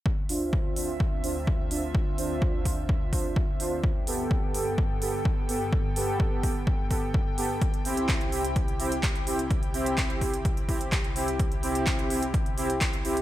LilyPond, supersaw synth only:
\new Staff \with { instrumentName = "Supersaw synth" } { \time 4/4 \key c \major \tempo 4 = 127 r8 <d' f' c''>4 <d' f' c''>8 r8 <d' f' c''>8 r8 <d' f' c''>8 | r8 <d' f' c''>4 <d' f' c''>8 r8 <d' f' c''>8 r8 <d' f' c''>8 | r8 <b g' a'>4 <b g' a'>8 r8 <b g' a'>8 r8 <b g' a'>8 | r8 <b g' a'>4 <b g' a'>8 r8 <b g' a'>8 r8 <b g' a'>8 |
r8 <c' e' g'>4 <c' e' g'>8 r8 <c' e' g'>8 r8 <c' e' g'>8 | r8 <c' e' g'>4 <c' e' g'>8 r8 <c' e' g'>8 r8 <c' e' g'>8 | r8 <c' e' g'>4 <c' e' g'>8 r8 <c' e' g'>8 r8 <c' e' g'>8 | }